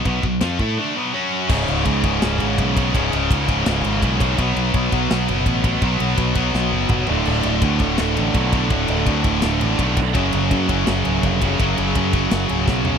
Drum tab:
CC |--------|x-------|--------|--------|
RD |b-b-----|-xxxxxxx|xxxxxxxx|xxxxxxxx|
SD |--o-----|----o---|----o---|----o---|
T2 |--------|--------|--------|--------|
FT |--------|--------|--------|--------|
BD |oo-o----|o-oo--oo|o-oo--oo|o-oo--oo|

CC |--------|x-------|--------|--------|
RD |xxxx----|-xxxxxxx|xxxxxxxx|xxxxxxxx|
SD |----o---|----o---|----o---|----o---|
T2 |------o-|--------|--------|--------|
FT |-------o|--------|--------|--------|
BD |o-oo--o-|--oo--oo|o-oo--oo|o-oo--oo|

CC |--------|
RD |xxxxxx--|
SD |----o-o-|
T2 |--------|
FT |-------o|
BD |o-oo--o-|